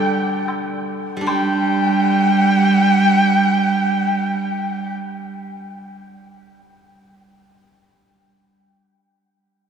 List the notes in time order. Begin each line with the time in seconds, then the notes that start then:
Already playing: G3 D4 G4 A4 D5 G5
0.48 high woodblock, low woodblock
1.17 G3
1.21 D4
1.26 G3 G4 G5, high woodblock